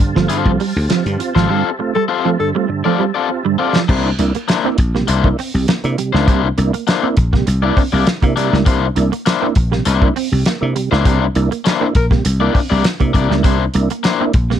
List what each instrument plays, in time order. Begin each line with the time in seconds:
Already playing: tonewheel organ G4 C5 F5 A5
0.00 tonewheel organ G2 D3, muted slap bass stroke, muted clean electric guitar stroke, kick
0.15 slap bass G1, clean electric guitar F3, tonewheel organ A3 C4 F4, snare
0.29 tonewheel organ G2 D3, overdriven electric guitar C4 F4 A4 C5, muted clean electric guitar stroke, closed hi-hat
0.45 slap bass C2, clean electric guitar F3, tonewheel organ A3 C4 F4, kick
0.59 clean electric guitar G3, tonewheel organ C4 F4, open hi-hat
0.76 slap bass D2
0.89 clean electric guitar F3, tonewheel organ C4 F4, snare, closed hi-hat
1.05 tonewheel organ G2 D3, slap bass G2, closed hi-hat
1.19 tonewheel organ C4 F4, muted clean electric guitar stroke, closed hi-hat
1.35 slap bass G#1, clean electric guitar F3, overdriven electric guitar C4 F4 A4 C5, snare
1.49 tonewheel organ G2 D3 E5, clean electric guitar G3, overdriven electric guitar C4 F4 A4 C5
1.65 tonewheel organ C4 F4
1.79 tonewheel organ A3 C4 F4, muted clean electric guitar stroke
1.95 clean electric guitar G3, tenor saxophone A4
2.08 overdriven electric guitar C4 F4 A4 C5
2.25 clean electric guitar F3, tonewheel organ A3 C4 F4
2.39 tonewheel organ G2 D3, tenor saxophone A4, muted clean electric guitar stroke
2.55 clean electric guitar G3, tonewheel organ A3 C4 F4
2.69 tonewheel organ G2 D3, muted clean electric guitar stroke
2.84 clean electric guitar F3, tonewheel organ A3 C4 F4, overdriven electric guitar C4 F4 A4 D5
2.99 clean electric guitar G3, tonewheel organ C4 F4
3.14 overdriven electric guitar C4 F4 A4 D5
3.29 tonewheel organ C4 F4
3.45 tonewheel organ G2 D3, clean electric guitar G3
3.58 overdriven electric guitar C4 F4 A4 D5, tonewheel organ C4 F4, muted clean electric guitar stroke
3.75 clean electric guitar F3, snare
3.88 slap bass C2, tonewheel organ C3 G3, overdriven electric guitar A#3 D4 E4 C5, clean electric guitar C4, kick, crash
4.05 tonewheel organ D4 E4
4.19 slap bass C2, tonewheel organ A#3 D4 E4, muted clean electric guitar stroke, closed hi-hat
4.35 clean electric guitar A#3, closed hi-hat
4.48 overdriven electric guitar A#3 D4 E4 C5, snare, closed hi-hat
4.64 tonewheel organ A#3 D4 E4, clean electric guitar C4
4.78 slap bass A#1, muted clean electric guitar stroke, kick, closed hi-hat
4.95 tonewheel organ C3 G3, clean electric guitar A#3, snare
5.08 slap bass C2, overdriven electric guitar A#3 D4 E4 C5, muted clean electric guitar stroke, closed hi-hat
5.24 tonewheel organ A#3 D4 E4, clean electric guitar A#3, kick
5.39 clean electric guitar C4, open hi-hat
5.54 slap bass C2, tonewheel organ C3 G3
5.68 clean electric guitar A#3, snare, closed hi-hat
5.84 slap bass C3, tonewheel organ A#3 D4 E4, closed hi-hat
5.98 tonewheel organ C3 G3, muted clean electric guitar stroke, closed hi-hat
6.13 slap bass C#2, clean electric guitar A#3, tonewheel organ A#3 D4 E4, overdriven electric guitar A#3 D4 E4 C5, snare
6.27 slap bass C2, tonewheel organ C3 G3, overdriven electric guitar A#3 D4 E4 C5, clean electric guitar C4, kick, closed hi-hat
6.44 tonewheel organ D4 E4
6.58 slap bass C2, tonewheel organ A#3 D4 E4, muted clean electric guitar stroke, closed hi-hat
6.73 clean electric guitar A#3, closed hi-hat
6.87 overdriven electric guitar A#3 D4 E4 C5, snare, closed hi-hat
7.03 tonewheel organ A#3 D4 E4, clean electric guitar C4
7.17 slap bass A#1, muted clean electric guitar stroke, kick, closed hi-hat
7.33 tonewheel organ C3 G3, clean electric guitar A#3, kick, snare
7.47 slap bass C2, muted clean electric guitar stroke, closed hi-hat
7.62 clean electric guitar A#3, tonewheel organ A#3 D4 E4, overdriven electric guitar A#3 D4 E4 D5
7.77 clean electric guitar C4, kick, open hi-hat
7.92 slap bass C2, tonewheel organ C3 G3, overdriven electric guitar A#3 D4 E4 D5
8.07 snare, closed hi-hat
8.21 slap bass C3, tonewheel organ A#3 D4 E4, clean electric guitar A#3, kick, closed hi-hat
8.36 tonewheel organ C3 G3, overdriven electric guitar A#3 D4 E4 D5, muted clean electric guitar stroke, closed hi-hat
8.52 slap bass C#2, clean electric guitar G3, tonewheel organ A#3 D4 E4, snare
8.66 slap bass C2, tonewheel organ C3 G3, overdriven electric guitar A#3 D4 E4 C5, clean electric guitar C4, kick, closed hi-hat
8.82 tonewheel organ D4 E4
8.96 slap bass C2, tonewheel organ A#3 D4 E4, muted clean electric guitar stroke, closed hi-hat
9.12 clean electric guitar A#3, closed hi-hat
9.26 overdriven electric guitar A#3 D4 E4 C5, snare, closed hi-hat
9.41 tonewheel organ A#3 D4 E4, clean electric guitar C4
9.55 slap bass A#1, muted clean electric guitar stroke, kick, closed hi-hat
9.71 tonewheel organ C3 G3, clean electric guitar A#3, snare
9.85 slap bass C2, overdriven electric guitar A#3 D4 E4 C5, muted clean electric guitar stroke, closed hi-hat
10.01 tonewheel organ A#3 D4 E4, clean electric guitar A#3, kick
10.16 clean electric guitar C4, open hi-hat
10.32 slap bass C2, tonewheel organ C3 G3
10.46 clean electric guitar A#3, snare, closed hi-hat
10.61 slap bass C3, tonewheel organ A#3 D4 E4
10.75 tonewheel organ C3 G3, muted clean electric guitar stroke, closed hi-hat
10.91 slap bass C#2, tonewheel organ A#3 D4 E4, clean electric guitar A#3, overdriven electric guitar A#3 D4 E4 C5, snare
11.05 slap bass C2, tonewheel organ C3 G3, overdriven electric guitar A#3 D4 E4 C5, clean electric guitar C4, kick, closed hi-hat
11.21 tonewheel organ D4 E4
11.35 slap bass C2, tonewheel organ A#3 D4 E4, muted clean electric guitar stroke, closed hi-hat
11.51 clean electric guitar A#3, closed hi-hat
11.65 overdriven electric guitar A#3 D4 E4 C5, snare, closed hi-hat
11.81 tonewheel organ A#3 D4 E4, clean electric guitar C4
11.95 slap bass A#1, tenor saxophone A#4, muted clean electric guitar stroke, kick, closed hi-hat
12.11 tonewheel organ C3 G3, clean electric guitar A#3, kick, snare
12.25 slap bass C2, muted clean electric guitar stroke, closed hi-hat
12.40 clean electric guitar A#3, tonewheel organ A#3 D4 E4, overdriven electric guitar A#3 D4 E4 D5
12.55 clean electric guitar C4, kick, open hi-hat
12.70 slap bass C2, tonewheel organ C3 G3, overdriven electric guitar A#3 D4 E4 D5
12.84 snare, closed hi-hat
13.00 slap bass C3, clean electric guitar A#3, tonewheel organ A#3 D4 E4, kick, closed hi-hat
13.14 slap bass C2, tonewheel organ C3 G3, overdriven electric guitar A#3 D4 E4 D5, muted clean electric guitar stroke, kick, closed hi-hat
13.30 slap bass C#2, clean electric guitar G3, tonewheel organ A#3 D4 E4, snare
13.44 slap bass C2, tonewheel organ C3 G3, overdriven electric guitar A#3 D4 E4 C5, clean electric guitar C4, kick, closed hi-hat
13.60 tonewheel organ D4 E4
13.74 slap bass C2, tonewheel organ A#3 D4 E4, muted clean electric guitar stroke, closed hi-hat
13.90 clean electric guitar A#3, closed hi-hat
14.03 overdriven electric guitar A#3 D4 E4 C5, snare, closed hi-hat
14.20 tonewheel organ A#3 D4 E4, clean electric guitar C4
14.33 slap bass A#1, muted clean electric guitar stroke, kick, closed hi-hat
14.50 tonewheel organ C3 G3, clean electric guitar A#3, snare